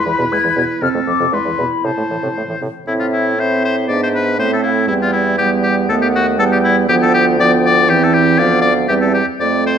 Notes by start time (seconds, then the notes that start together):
Already playing: E4 B4
0.06 E2 E3 B5
0.18 E2 B2
0.32 E2 G#3 G#6
0.44 E2 E3
0.56 E2 B2 G#6
0.82 F2 C3 C4 A4 F6
0.94 F2 A3
1.07 F2 F3 D6
1.20 F2 C3
1.32 E2 G#3 E4 B4 C6
1.45 E2 E3
1.58 E2 B2 B5
1.84 A2 C3 C5 A5
1.97 A2 A3
2.11 A2 E3
2.22 A2 C3
2.36 A2 A3
2.48 A2 E3
2.61 A2 C3
2.87 A2 C4 E4 E5
3.00 F4
3.13 E4
3.37 C4 E4 C5 E5
3.65 C5
3.88 G#2 B3 D4 D5 E5
4.03 C5
4.15 B4
4.38 A2 A3 C4 C5 E5
4.53 A4
4.63 E4 F5
4.88 E2 G3 B3 E4 G5
5.02 F4
5.12 E4
5.38 G3 B3 G4 G5
5.63 G4
5.88 D#2 A3 B3 A4 F#5
6.02 G4
6.16 F#4
6.38 E2 G3 B3 A4 G5
6.52 G4
6.64 E4
6.89 D2 F3 B3 G4 G5
7.02 A4
7.14 G4
7.38 F3 B3 D5 G5
7.66 D5
7.88 E2 E3 C4 G4 G5
8.03 A4
8.14 G4
8.38 D2 F3 B3 D5 F5
8.61 D5
8.89 E2 G3 C4 G4 E5
9.01 A4
9.14 G4
9.40 F2 A3 C4 D5
9.67 C5